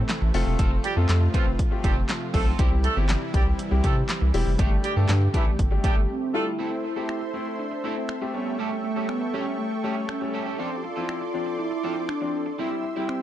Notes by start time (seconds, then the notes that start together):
Already playing: C3 E3 A3 E4
0.09 muted clean electric guitar stroke, snare, clap, closed hi-hat
0.21 A1, muted clean electric guitar stroke
0.34 F1 F3 A3 C4 F4 A4, open hi-hat
0.46 E1, muted clean electric guitar stroke
0.59 F1 C4 F4 A4, kick, closed hi-hat
0.71 muted clean electric guitar stroke
0.84 G3 G4, muted clean electric guitar stroke, closed hi-hat
0.96 F2 A3 C4 F4 A4
1.09 F2, muted clean electric guitar stroke, snare, clap, closed hi-hat
1.21 muted clean electric guitar stroke
1.34 F3 A3 C4 F4 A4 B4, kick, closed hi-hat
1.46 F1, muted clean electric guitar stroke
1.59 kick, closed hi-hat
1.71 A3 C4 F4 G4, muted clean electric guitar stroke
1.84 F1 G3 C4 F4 G4 A4, kick, closed hi-hat
1.96 muted clean electric guitar stroke
2.09 muted clean electric guitar stroke, snare, clap, closed hi-hat
2.21 muted clean electric guitar stroke
2.34 B1 A3 C4 F4 A4, kick, open hi-hat
2.46 C4 F4 A4
2.58 C2 C3 E3 G3 C4 E4 G4, kick, closed hi-hat
2.71 muted clean electric guitar stroke
2.84 A3 A4, muted clean electric guitar stroke, closed hi-hat
2.96 G1 G3 C4 E4 G4
3.09 muted clean electric guitar stroke, snare, clap, closed hi-hat
3.21 muted clean electric guitar stroke
3.34 C2 G3 C4 E4 G4, kick, closed hi-hat
3.46 muted clean electric guitar stroke
3.59 muted clean electric guitar stroke, closed hi-hat
3.71 C2 G3 C4 E4 G4, muted clean electric guitar stroke
3.84 C3 A3 C4 E4 G4 A4, kick, closed hi-hat
3.96 muted clean electric guitar stroke
4.09 muted clean electric guitar stroke, snare, clap, closed hi-hat
4.21 C2, muted clean electric guitar stroke
4.34 E1 G3 C4 E4 G4, open hi-hat
4.46 F1, muted clean electric guitar stroke
4.58 G1 D3 G3 A3 D4 G4, kick, closed hi-hat
4.71 muted clean electric guitar stroke
4.84 G3 G4, muted clean electric guitar stroke, closed hi-hat
4.96 G2 G3 A3 D4 G4 A4
5.09 G2, muted clean electric guitar stroke, snare, clap, closed hi-hat
5.21 muted clean electric guitar stroke
5.34 E3 G3 A3 D4 E4 G4, kick, closed hi-hat
5.46 A1, muted clean electric guitar stroke
5.59 G1, kick, closed hi-hat
5.71 G3 A3 D4 G4, muted clean electric guitar stroke
5.84 G1 G3 A3 D4 G4, kick, closed hi-hat
5.96 G1, muted clean electric guitar stroke
6.09 C4
6.34 G3 A3 D4 E4 F4 A4
6.59 A3 C4 E4 A4 C5 E5 C6
6.71 muted clean electric guitar stroke
6.84 E4, muted clean electric guitar stroke
6.96 A3 C4 E4 G4 A4
7.09 finger snap, muted clean electric guitar stroke
7.21 muted clean electric guitar stroke
7.34 A3 C4 E4
7.46 muted clean electric guitar stroke
7.52 E4
7.59 D4, muted clean electric guitar stroke
7.71 muted clean electric guitar stroke
7.84 A3 C4 E4 A4
7.96 C4, muted clean electric guitar stroke
8.09 finger snap, muted clean electric guitar stroke
8.21 A3 C4 G4, muted clean electric guitar stroke
8.34 G3 A3 B3 C#4 G5 C#6
8.46 muted clean electric guitar stroke
8.59 A3 C#4 G4 A4
8.71 muted clean electric guitar stroke
8.84 A3, muted clean electric guitar stroke
8.96 G3 A3 C#4 G4 A4
9.09 B3, finger snap, muted clean electric guitar stroke
9.21 muted clean electric guitar stroke
9.34 G3 A3 C#4 G4 A4
9.46 muted clean electric guitar stroke
9.59 A3
9.71 muted clean electric guitar stroke
9.84 G3 A3 C#4 G4 A4
9.96 muted clean electric guitar stroke
10.09 C#4, finger snap, muted clean electric guitar stroke
10.21 G3 A3 C#4, muted clean electric guitar stroke
10.33 C#4 G4 A4
10.46 C#4 G4 A4
10.58 F3 C4 D4 F4 A4 D5 C6 D6
10.71 muted clean electric guitar stroke
10.77 G4
10.83 F4, muted clean electric guitar stroke
10.96 F3 C4 E4 F4 A4
11.09 finger snap, muted clean electric guitar stroke
11.21 muted clean electric guitar stroke
11.34 F3 C4 D4
11.46 muted clean electric guitar stroke
11.58 E4, muted clean electric guitar stroke
11.71 muted clean electric guitar stroke
11.83 F3 C4 D4 F4 A4
11.96 muted clean electric guitar stroke
12.09 D4, finger snap, muted clean electric guitar stroke
12.21 F3 C4 D4, muted clean electric guitar stroke
12.46 muted clean electric guitar stroke
12.59 G3 C4 E4 G4 E5 C6 E6
12.71 muted clean electric guitar stroke
12.84 muted clean electric guitar stroke
12.96 G3 C4 E4
13.09 C4, finger snap, muted clean electric guitar stroke